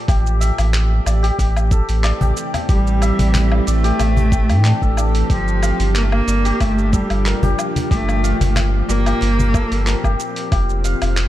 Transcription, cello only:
2.69 3.68 G3 loud
3.66 4.97 A3 loud
5.31 5.92 F3 loud
5.95 6.05 A#3 loud
6.03 6.11 A3 medium
6.10 6.62 A#3 loud
6.61 6.96 A3 loud
6.94 7.59 G3 medium
7.91 8.52 A3 loud
8.88 10.15 A#3 loud

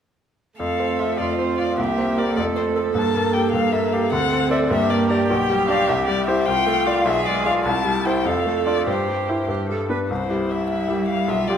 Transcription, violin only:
0.58 1.00 F5 soft
0.99 1.19 E5 soft
1.18 1.38 D5 soft
1.38 1.58 C5 soft
1.58 1.78 D5 soft
1.79 2.20 E5 soft
2.18 2.36 D5 soft
2.36 2.44 D5 soft
2.56 2.64 C5 soft
2.76 2.84 A4 soft
2.95 3.35 A5 soft
3.33 3.51 G5 soft
3.52 3.74 F5 medium
3.72 3.94 E5 soft
3.92 4.12 F5 soft
4.12 4.50 F#5 medium
4.52 4.59 E5 soft
4.69 4.91 E5 medium
4.89 5.08 D5 medium
5.09 5.27 A#4 medium
5.28 5.67 G5 medium
5.68 5.90 F5 medium
5.89 6.07 E5 medium
6.08 6.26 D5 medium
6.27 6.47 E5 medium
6.46 6.88 G5 medium
6.86 7.07 F5 medium
7.05 7.27 E5 medium
7.26 7.45 D5 medium
7.45 7.53 F5 medium
7.64 8.06 A5 medium
8.05 8.28 G5 medium
8.26 8.66 F5 soft
8.67 8.87 D5 soft
8.87 9.48 C5 soft
10.09 10.52 C5 soft
10.50 10.69 E5 soft
10.70 11.08 E5 soft
11.08 11.30 F5 soft
11.28 11.49 E5 medium
11.47 11.58 D5 soft

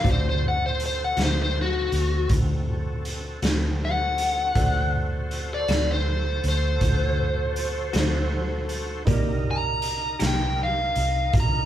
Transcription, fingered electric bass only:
0.05 1.13 D2 medium
1.17 1.88 D2 medium
1.92 2.27 D2 medium
2.30 3.39 D2 medium
3.42 4.51 D2 medium
4.56 5.64 D2 medium
5.69 6.40 D2 medium
6.44 6.78 D2 medium
6.81 7.90 D2 medium
7.94 9.03 D2 medium
9.07 10.16 C2 medium
10.21 10.92 C2 medium
10.96 11.31 C2 medium
11.34 11.65 C2 medium

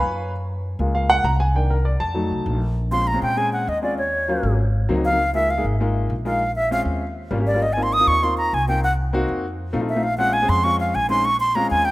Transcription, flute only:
2.92 3.09 C6 medium
3.07 3.22 A#5 medium
3.23 3.39 G5 medium
3.37 3.52 G#5 medium
3.53 3.70 F#5 medium
3.69 3.82 D#5 medium
3.83 3.97 D5 medium
3.98 4.55 C#5 medium
5.05 5.33 F5 medium
5.34 5.52 E5 medium
5.50 5.65 F5 medium
6.26 6.54 F5 medium
6.56 6.70 E5 medium
6.72 6.81 F5 medium
7.47 7.64 D5 medium
7.62 7.74 D#5 medium
7.73 7.84 G#5 medium
7.83 7.95 C6 medium
7.93 8.09 D#6 loud
8.08 8.25 C#6 loud
8.23 8.37 C6 medium
8.38 8.56 A#5 medium
8.54 8.68 G#5 medium
8.68 8.82 G5 medium
8.84 8.92 F#5 medium
9.89 10.05 E5 medium
10.03 10.17 F5 medium
10.18 10.35 F#5 loud
10.33 10.51 G#5 loud
10.49 10.65 C6 loud
10.64 10.79 C#6 loud
10.80 10.96 F5 medium
10.95 11.09 G#5 loud
11.10 11.27 C6 loud
11.25 11.39 C#6 loud
11.40 11.57 C6 loud
11.55 11.70 A#5 medium
11.70 11.87 G#5 loud
11.85 11.91 G5 medium

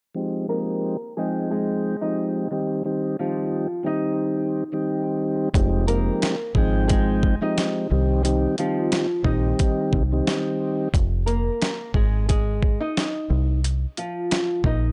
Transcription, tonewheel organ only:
0.15 0.46 F3 medium
0.15 0.47 G#3 medium
0.15 0.47 C4 medium
0.15 0.47 D#4 medium
0.15 0.47 G4 medium
0.48 0.96 F3 medium
0.48 0.97 G#3 medium
0.48 0.97 C4 medium
0.48 0.97 D#4 medium
0.48 0.97 G4 loud
1.17 1.95 F3 medium
1.17 1.96 G#3 medium
1.17 1.96 C4 medium
1.17 1.96 D#4 medium
1.17 1.96 G5 loud
2.02 2.47 F3 medium
2.02 2.48 G#3 medium
2.02 2.48 C4 medium
2.02 2.48 D#4 medium
2.02 2.48 G4 loud
2.51 2.82 D#3 medium
2.51 2.82 G3 medium
2.51 2.83 C4 medium
2.51 2.83 D#4 medium
2.51 2.83 G4 loud
2.84 3.16 D#3 loud
2.84 3.16 G3 medium
2.84 3.16 C4 medium
2.84 3.17 D#4 medium
2.84 3.17 G4 loud
3.19 3.67 D#3 medium
3.19 3.67 G3 medium
3.19 3.67 C4 medium
3.19 3.67 D#4 medium
3.19 3.68 G4 loud
3.83 4.63 D#3 medium
3.83 4.63 G3 medium
3.83 4.64 C4 medium
3.83 4.64 D#4 medium
3.83 4.64 G4 loud
4.72 5.49 D#3 loud
4.72 5.49 G3 medium
4.72 5.49 C4 medium
4.72 5.49 D#4 medium
4.72 5.50 G4 loud
5.54 5.86 F3 medium
5.54 5.86 G#3 medium
5.54 5.86 C4 medium
5.54 5.86 D#4 medium
5.54 5.86 G4 loud
5.87 6.35 F3 medium
5.87 6.36 G#3 medium
5.87 6.36 C4 medium
5.87 6.36 D#4 medium
5.87 6.36 G4 loud
6.57 7.35 F3 medium
6.57 7.35 G#3 medium
6.57 7.35 C4 medium
6.57 7.35 D#4 medium
6.57 7.36 G5 loud
7.41 7.87 F3 medium
7.41 7.87 G#3 medium
7.41 7.87 C4 medium
7.41 7.87 D#4 medium
7.41 7.88 G4 loud
7.90 8.22 D#3 loud
7.90 8.22 G3 medium
7.90 8.22 C4 medium
7.90 8.22 D#4 medium
7.90 8.23 G4 loud
8.23 8.55 D#3 loud
8.23 8.55 G3 medium
8.23 8.56 C4 medium
8.23 8.56 D#4 medium
8.23 8.56 G4 loud
8.58 9.06 D#3 loud
8.58 9.06 G3 medium
8.58 9.06 C4 medium
8.58 9.07 D#4 medium
8.58 9.07 G4 loud
9.22 10.02 D#3 medium
9.22 10.03 G3 medium
9.22 10.03 C4 medium
9.22 10.03 D#4 medium
9.22 10.03 G4 loud
10.12 10.88 D#3 loud
10.12 10.88 G3 medium
10.12 10.88 C4 medium
10.12 10.89 D#4 medium
10.12 10.89 G4 loud

